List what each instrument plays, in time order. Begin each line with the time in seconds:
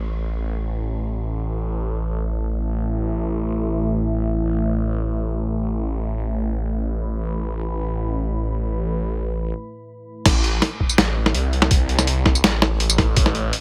Already playing: detuned saw bass A1, ambient pad A3 E4 E5 A5
4.44 detuned saw bass A1
5.86 ambient pad B5
10.26 detuned saw bass A1, kick, snare, closed hi-hat, crash
10.44 closed hi-hat
10.62 snare, closed hi-hat
10.80 kick
10.89 tambourine
10.98 detuned saw bass A1, snare, closed hi-hat
11.26 snare
11.35 detuned saw bass C2, closed hi-hat
11.53 closed hi-hat
11.62 snare
11.71 kick, closed hi-hat
11.89 closed hi-hat
11.99 snare, tambourine
12.07 closed hi-hat
12.26 kick, snare
12.35 tambourine
12.44 detuned saw bass A1, snare, closed hi-hat
12.62 snare
12.80 detuned saw bass A1, closed hi-hat
12.90 tambourine
12.98 kick, snare, closed hi-hat
13.17 detuned saw bass A1, kick, closed hi-hat
13.26 snare
13.35 closed hi-hat
13.53 closed hi-hat